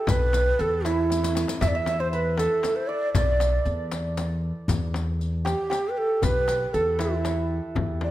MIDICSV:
0, 0, Header, 1, 7, 480
1, 0, Start_track
1, 0, Tempo, 512821
1, 73, Time_signature, 6, 3, 24, 8
1, 7590, End_track
2, 0, Start_track
2, 0, Title_t, "Ney"
2, 0, Program_c, 0, 77
2, 0, Note_on_c, 0, 69, 81
2, 89, Note_on_c, 0, 71, 97
2, 103, Note_off_c, 0, 69, 0
2, 567, Note_on_c, 0, 69, 85
2, 581, Note_off_c, 0, 71, 0
2, 798, Note_on_c, 0, 64, 84
2, 812, Note_off_c, 0, 69, 0
2, 1334, Note_off_c, 0, 64, 0
2, 1514, Note_on_c, 0, 76, 100
2, 1571, Note_on_c, 0, 74, 82
2, 1585, Note_off_c, 0, 76, 0
2, 1651, Note_on_c, 0, 76, 102
2, 1665, Note_off_c, 0, 74, 0
2, 1871, Note_on_c, 0, 72, 81
2, 1885, Note_off_c, 0, 76, 0
2, 1983, Note_off_c, 0, 72, 0
2, 1989, Note_on_c, 0, 71, 83
2, 2228, Note_on_c, 0, 69, 86
2, 2242, Note_off_c, 0, 71, 0
2, 2581, Note_on_c, 0, 72, 80
2, 2595, Note_off_c, 0, 69, 0
2, 2689, Note_on_c, 0, 74, 85
2, 2703, Note_off_c, 0, 72, 0
2, 2929, Note_off_c, 0, 74, 0
2, 2934, Note_on_c, 0, 74, 87
2, 3444, Note_off_c, 0, 74, 0
2, 5120, Note_on_c, 0, 67, 87
2, 5510, Note_on_c, 0, 71, 64
2, 5524, Note_off_c, 0, 67, 0
2, 5593, Note_on_c, 0, 69, 89
2, 5607, Note_off_c, 0, 71, 0
2, 5835, Note_on_c, 0, 71, 105
2, 5849, Note_off_c, 0, 69, 0
2, 6303, Note_on_c, 0, 69, 88
2, 6317, Note_off_c, 0, 71, 0
2, 6557, Note_on_c, 0, 64, 75
2, 6571, Note_off_c, 0, 69, 0
2, 7094, Note_off_c, 0, 64, 0
2, 7512, Note_on_c, 0, 74, 74
2, 7590, Note_off_c, 0, 74, 0
2, 7590, End_track
3, 0, Start_track
3, 0, Title_t, "Santur"
3, 0, Program_c, 1, 15
3, 0, Note_on_c, 1, 64, 62
3, 0, Note_on_c, 1, 67, 65
3, 0, Note_on_c, 1, 69, 53
3, 81, Note_on_c, 1, 71, 74
3, 548, Note_off_c, 1, 69, 0
3, 552, Note_on_c, 1, 69, 72
3, 792, Note_off_c, 1, 64, 0
3, 796, Note_on_c, 1, 64, 65
3, 1506, Note_on_c, 1, 76, 79
3, 1632, Note_off_c, 1, 76, 0
3, 1636, Note_on_c, 1, 76, 78
3, 1871, Note_on_c, 1, 72, 72
3, 1928, Note_off_c, 1, 71, 0
3, 1993, Note_on_c, 1, 71, 73
3, 2049, Note_off_c, 1, 72, 0
3, 2233, Note_off_c, 1, 69, 0
3, 2236, Note_on_c, 1, 69, 69
3, 2540, Note_off_c, 1, 67, 0
3, 2703, Note_on_c, 1, 74, 68
3, 2943, Note_off_c, 1, 74, 0
3, 2947, Note_on_c, 1, 74, 68
3, 3787, Note_off_c, 1, 76, 0
3, 4055, Note_off_c, 1, 64, 0
3, 4550, Note_off_c, 1, 71, 0
3, 4979, Note_off_c, 1, 69, 0
3, 5099, Note_on_c, 1, 67, 72
3, 5256, Note_off_c, 1, 74, 0
3, 5330, Note_off_c, 1, 67, 0
3, 5334, Note_on_c, 1, 67, 74
3, 5835, Note_on_c, 1, 71, 81
3, 6308, Note_on_c, 1, 69, 72
3, 6545, Note_on_c, 1, 64, 58
3, 7590, Note_off_c, 1, 64, 0
3, 7590, Note_off_c, 1, 67, 0
3, 7590, Note_off_c, 1, 69, 0
3, 7590, Note_off_c, 1, 71, 0
3, 7590, End_track
4, 0, Start_track
4, 0, Title_t, "Upright bass"
4, 0, Program_c, 2, 32
4, 83, Note_on_c, 2, 35, 85
4, 472, Note_off_c, 2, 35, 0
4, 555, Note_on_c, 2, 40, 85
4, 1341, Note_off_c, 2, 40, 0
4, 1511, Note_on_c, 2, 40, 88
4, 2298, Note_off_c, 2, 40, 0
4, 2946, Note_on_c, 2, 35, 82
4, 3341, Note_off_c, 2, 35, 0
4, 3421, Note_on_c, 2, 40, 87
4, 4212, Note_off_c, 2, 40, 0
4, 4381, Note_on_c, 2, 40, 96
4, 5173, Note_off_c, 2, 40, 0
4, 5825, Note_on_c, 2, 35, 81
4, 6221, Note_off_c, 2, 35, 0
4, 6309, Note_on_c, 2, 40, 78
4, 7099, Note_off_c, 2, 40, 0
4, 7267, Note_on_c, 2, 40, 77
4, 7590, Note_off_c, 2, 40, 0
4, 7590, End_track
5, 0, Start_track
5, 0, Title_t, "Frame drum"
5, 66, Note_on_c, 9, 64, 96
5, 160, Note_off_c, 9, 64, 0
5, 310, Note_on_c, 9, 64, 65
5, 403, Note_off_c, 9, 64, 0
5, 799, Note_on_c, 9, 64, 60
5, 892, Note_off_c, 9, 64, 0
5, 1509, Note_on_c, 9, 64, 83
5, 1602, Note_off_c, 9, 64, 0
5, 1744, Note_on_c, 9, 64, 66
5, 1837, Note_off_c, 9, 64, 0
5, 2224, Note_on_c, 9, 64, 61
5, 2318, Note_off_c, 9, 64, 0
5, 2468, Note_on_c, 9, 64, 59
5, 2561, Note_off_c, 9, 64, 0
5, 2944, Note_on_c, 9, 64, 97
5, 3038, Note_off_c, 9, 64, 0
5, 3184, Note_on_c, 9, 64, 60
5, 3277, Note_off_c, 9, 64, 0
5, 3669, Note_on_c, 9, 64, 62
5, 3763, Note_off_c, 9, 64, 0
5, 3908, Note_on_c, 9, 64, 59
5, 4002, Note_off_c, 9, 64, 0
5, 4390, Note_on_c, 9, 64, 77
5, 4483, Note_off_c, 9, 64, 0
5, 4626, Note_on_c, 9, 64, 63
5, 4720, Note_off_c, 9, 64, 0
5, 5110, Note_on_c, 9, 64, 65
5, 5203, Note_off_c, 9, 64, 0
5, 5349, Note_on_c, 9, 64, 63
5, 5443, Note_off_c, 9, 64, 0
5, 5830, Note_on_c, 9, 64, 87
5, 5923, Note_off_c, 9, 64, 0
5, 6062, Note_on_c, 9, 64, 64
5, 6156, Note_off_c, 9, 64, 0
5, 6542, Note_on_c, 9, 64, 64
5, 6635, Note_off_c, 9, 64, 0
5, 6785, Note_on_c, 9, 64, 61
5, 6878, Note_off_c, 9, 64, 0
5, 7263, Note_on_c, 9, 64, 84
5, 7356, Note_off_c, 9, 64, 0
5, 7498, Note_on_c, 9, 64, 65
5, 7590, Note_off_c, 9, 64, 0
5, 7590, End_track
6, 0, Start_track
6, 0, Title_t, "Riq"
6, 79, Note_on_c, 9, 54, 59
6, 173, Note_off_c, 9, 54, 0
6, 319, Note_on_c, 9, 54, 48
6, 413, Note_off_c, 9, 54, 0
6, 559, Note_on_c, 9, 54, 18
6, 653, Note_off_c, 9, 54, 0
6, 804, Note_on_c, 9, 54, 49
6, 897, Note_off_c, 9, 54, 0
6, 1046, Note_on_c, 9, 54, 52
6, 1139, Note_off_c, 9, 54, 0
6, 1164, Note_on_c, 9, 54, 64
6, 1257, Note_off_c, 9, 54, 0
6, 1279, Note_on_c, 9, 54, 73
6, 1372, Note_off_c, 9, 54, 0
6, 1395, Note_on_c, 9, 54, 77
6, 1489, Note_off_c, 9, 54, 0
6, 1519, Note_on_c, 9, 54, 64
6, 1613, Note_off_c, 9, 54, 0
6, 1753, Note_on_c, 9, 54, 46
6, 1847, Note_off_c, 9, 54, 0
6, 1993, Note_on_c, 9, 54, 18
6, 2087, Note_off_c, 9, 54, 0
6, 2240, Note_on_c, 9, 54, 44
6, 2334, Note_off_c, 9, 54, 0
6, 2474, Note_on_c, 9, 54, 45
6, 2568, Note_off_c, 9, 54, 0
6, 2949, Note_on_c, 9, 54, 69
6, 3043, Note_off_c, 9, 54, 0
6, 3191, Note_on_c, 9, 54, 49
6, 3284, Note_off_c, 9, 54, 0
6, 3427, Note_on_c, 9, 54, 18
6, 3520, Note_off_c, 9, 54, 0
6, 3664, Note_on_c, 9, 54, 42
6, 3758, Note_off_c, 9, 54, 0
6, 3907, Note_on_c, 9, 54, 43
6, 4000, Note_off_c, 9, 54, 0
6, 4390, Note_on_c, 9, 54, 54
6, 4484, Note_off_c, 9, 54, 0
6, 4640, Note_on_c, 9, 54, 39
6, 4733, Note_off_c, 9, 54, 0
6, 4877, Note_on_c, 9, 54, 19
6, 4971, Note_off_c, 9, 54, 0
6, 5121, Note_on_c, 9, 54, 40
6, 5215, Note_off_c, 9, 54, 0
6, 5359, Note_on_c, 9, 54, 39
6, 5452, Note_off_c, 9, 54, 0
6, 5829, Note_on_c, 9, 54, 47
6, 5923, Note_off_c, 9, 54, 0
6, 6070, Note_on_c, 9, 54, 42
6, 6164, Note_off_c, 9, 54, 0
6, 6311, Note_on_c, 9, 54, 19
6, 6404, Note_off_c, 9, 54, 0
6, 6556, Note_on_c, 9, 54, 42
6, 6650, Note_off_c, 9, 54, 0
6, 6789, Note_on_c, 9, 54, 42
6, 6883, Note_off_c, 9, 54, 0
6, 7590, End_track
7, 0, Start_track
7, 0, Title_t, "Tombak"
7, 71, Note_on_c, 9, 64, 94
7, 165, Note_off_c, 9, 64, 0
7, 315, Note_on_c, 9, 63, 59
7, 409, Note_off_c, 9, 63, 0
7, 794, Note_on_c, 9, 63, 71
7, 887, Note_off_c, 9, 63, 0
7, 1032, Note_on_c, 9, 63, 56
7, 1125, Note_off_c, 9, 63, 0
7, 1156, Note_on_c, 9, 62, 62
7, 1250, Note_off_c, 9, 62, 0
7, 1266, Note_on_c, 9, 63, 65
7, 1360, Note_off_c, 9, 63, 0
7, 1386, Note_on_c, 9, 62, 84
7, 1480, Note_off_c, 9, 62, 0
7, 1512, Note_on_c, 9, 64, 83
7, 1606, Note_off_c, 9, 64, 0
7, 1748, Note_on_c, 9, 63, 65
7, 1841, Note_off_c, 9, 63, 0
7, 2222, Note_on_c, 9, 63, 68
7, 2315, Note_off_c, 9, 63, 0
7, 2462, Note_on_c, 9, 63, 73
7, 2556, Note_off_c, 9, 63, 0
7, 2946, Note_on_c, 9, 64, 91
7, 3039, Note_off_c, 9, 64, 0
7, 3184, Note_on_c, 9, 63, 63
7, 3277, Note_off_c, 9, 63, 0
7, 3420, Note_on_c, 9, 62, 28
7, 3514, Note_off_c, 9, 62, 0
7, 3664, Note_on_c, 9, 63, 68
7, 3757, Note_off_c, 9, 63, 0
7, 3909, Note_on_c, 9, 63, 67
7, 4002, Note_off_c, 9, 63, 0
7, 4388, Note_on_c, 9, 64, 98
7, 4481, Note_off_c, 9, 64, 0
7, 4625, Note_on_c, 9, 63, 66
7, 4719, Note_off_c, 9, 63, 0
7, 4872, Note_on_c, 9, 62, 29
7, 4965, Note_off_c, 9, 62, 0
7, 5107, Note_on_c, 9, 63, 67
7, 5200, Note_off_c, 9, 63, 0
7, 5344, Note_on_c, 9, 63, 65
7, 5438, Note_off_c, 9, 63, 0
7, 5822, Note_on_c, 9, 64, 70
7, 5915, Note_off_c, 9, 64, 0
7, 6065, Note_on_c, 9, 63, 66
7, 6159, Note_off_c, 9, 63, 0
7, 6308, Note_on_c, 9, 62, 26
7, 6402, Note_off_c, 9, 62, 0
7, 6545, Note_on_c, 9, 63, 68
7, 6639, Note_off_c, 9, 63, 0
7, 6783, Note_on_c, 9, 63, 74
7, 6877, Note_off_c, 9, 63, 0
7, 7257, Note_on_c, 9, 64, 78
7, 7351, Note_off_c, 9, 64, 0
7, 7502, Note_on_c, 9, 63, 60
7, 7590, Note_off_c, 9, 63, 0
7, 7590, End_track
0, 0, End_of_file